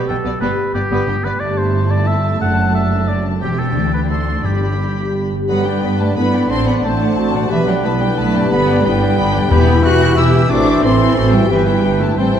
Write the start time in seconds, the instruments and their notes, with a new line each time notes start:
Already playing: harp B2 B3 D4 G4 B4
0.08 double bass section B1, cello section B2, viola section B3, violin section D4 G5, oboe A4, harp D5
0.24 double bass section B1, cello section B2, viola section B3, violin section B3 D5, harp B4
0.41 double bass section G1, cello section G2, harp G2, violin section G3 B4, viola section B3, oboe B4
0.59 harp B3
0.74 double bass section G1, cello section G2, viola section B3, violin section B3 D5, oboe G4, harp G4
0.91 double bass section G1, cello section G2, violin section G3 B4, viola section B3, harp B4
1.08 double bass section G1, cello section G2, viola section B3, violin section D4 G5
1.24 double bass section G1, cello section G2, viola section B3, violin section B3 D5, oboe B4
1.40 double bass section G1, cello section G2, harp G2, viola section A3, violin section E4 A5, oboe D5
1.58 harp A3, oboe C5
1.74 harp A4
1.91 harp E4, oboe D5
2.07 oboe E5, harp E5
2.25 harp A4
2.41 double bass section F#1, harp F#2, cello section F#2, violin section D4, oboe F#5
2.58 harp A3
2.75 harp A4, oboe E5
2.91 harp D4
3.08 harp D5, oboe D5
3.25 harp A4
3.42 double bass section E1, cello section E2, harp E3, viola section C4, oboe G4, violin section G4 G5
3.58 harp C4 C5, oboe A4
3.75 double bass section D2, cello section D2, harp D3, viola section D4
3.92 harp D4 B4, oboe B4
4.09 harp D3, violin section F#4 C6, oboe A4
4.27 harp D4 C5
4.44 double bass section G1, harp G2, timpani G2, cello section G2, violin section G4 B5, oboe G4
4.62 harp G3
4.79 harp B4
4.96 harp G4
5.14 harp D5
5.31 harp G2 G4
5.36 harp G3
5.40 harp D4
5.45 harp B4, french horn section B4, violin section B5
5.49 double bass section G2, bassoon D3, cello section F#3, viola section B3 B4, french horn section D4, oboe B4, violin section F#5, flute F#5
5.65 cello section G3, viola section D4 D5, violin section G5, flute G5
5.82 double bass section G2, viola section B3 B4, clarinet D4, violin section B5
5.99 cello section A3, viola section D4 D5, violin section G5 A5, flute A5
6.16 double bass section G2, bassoon D3, cello section B3, viola section B3 B4, clarinet E4, oboe B4, violin section B5, flute B5
6.32 harp A2, viola section D4 D5, violin section G5
6.37 harp F#3
6.41 harp D4
6.45 harp C5
6.50 double bass section A1, bassoon D3, cello section C4, viola section C4 C5, clarinet D4, french horn section C5, oboe C5, violin section A5 C6, flute C6
6.67 cello section B3, viola section D4 D5, violin section F#5 B5, flute B5
6.83 double bass section A1, bassoon D3, cello section A3, viola section C4 C5, oboe C5, violin section A5, flute A5
7.01 viola section D4 D5, violin section F#5
7.17 double bass section A1, viola section C4 C5, clarinet F#4, violin section A5
7.33 harp B2, viola section D4 D5, violin section F#5
7.38 harp G3
7.42 harp D4
7.47 double bass section B1, bassoon D3, cello section E3, french horn section D4 B4, harp B4, oboe B4, violin section E5
7.51 viola section B3 B4, clarinet G4, flute E5, violin section B5
7.68 cello section F#3, viola section D4 D5, violin section F#5 G5, flute F#5
7.84 double bass section B1, cello section A3, viola section B3 B4, clarinet E4, flute A5, violin section A5 B5
8.01 cello section G3, viola section D4 D5, violin section G5, flute G5
8.16 double bass section B1, cello section A3, viola section B3 B4, flute A5, violin section A5 B5
8.34 harp G2, viola section D4 D5, violin section G5
8.38 harp G3
8.42 harp D4
8.47 double bass section G1, clarinet D4, harp B4, flute B5, violin section B5
8.51 bassoon D3, cello section B3, viola section B3 B4, oboe B4
8.68 viola section D4 D5, violin section G5
8.84 double bass section G1, bassoon D3, cello section G3, viola section B3 B4, clarinet E4, oboe B4, violin section G5 B5, flute G5
9.00 viola section D4 D5, violin section G5
9.17 double bass section G1, viola section B3 B4, clarinet D4, violin section B5
9.33 harp E2, viola section D4 D5, violin section G5
9.37 harp G3
9.42 harp E4
9.46 harp E5
9.51 double bass section E1, timpani E2, bassoon E3, cello section B3, french horn section E4 G4, clarinet E4, viola section G4 B4, oboe G4, violin section E5 B5, flute B5
9.67 viola section E4 G4, violin section G5
9.83 double bass section E1, cello section F#4, viola section G4 B4, violin section E5 F#6, flute F#6
10.01 viola section E4 G4, violin section G5
10.16 double bass section E1, bassoon E3, cello section E4, viola section G4 B4, clarinet G4, oboe G4, violin section E5 E6, flute E6
10.33 harp A2, viola section E4 G4, violin section G5
10.37 harp A3
10.41 harp E4
10.46 double bass section A1, cello section D4, clarinet F#4, french horn section A4, oboe A4, viola section A4, harp E5, flute D6, violin section D6
10.50 bassoon E3, viola section C4, violin section C5
10.67 viola section E4 C5, violin section E5
10.83 double bass section A1, bassoon E3, viola section C4 A4, cello section C4, clarinet E4, oboe A4, violin section C5 C6, flute C6
11.01 viola section E4 C5, violin section E5
11.17 double bass section A1, viola section C4 A4, clarinet F#4, violin section C5
11.32 harp G2, cello section G3, viola section E4 C5, violin section E5 G5, flute G5
11.37 harp B3
11.41 harp E4
11.45 viola section G4, harp E5
11.50 double bass section G1, cello section E3, bassoon E3, clarinet E4, french horn section E4 B4, viola section B4, oboe B4, violin section E5 G5, flute E5
11.66 cello section G3, viola section E4 G4, violin section E5 G5, flute G5
11.84 double bass section G1, clarinet D4, viola section G4 B4, violin section G5
12.00 harp A2, cello section A3, viola section E4 G4, violin section E5 A5, flute A5
12.04 harp C4
12.09 harp E4
12.14 harp E5, flute G5, violin section G5
12.18 double bass section A1, bassoon E3, cello section G3, viola section C4 C5, clarinet C4, french horn section E4 C5, oboe C5, violin section A5
12.35 harp B2, viola section E4 A4, violin section E5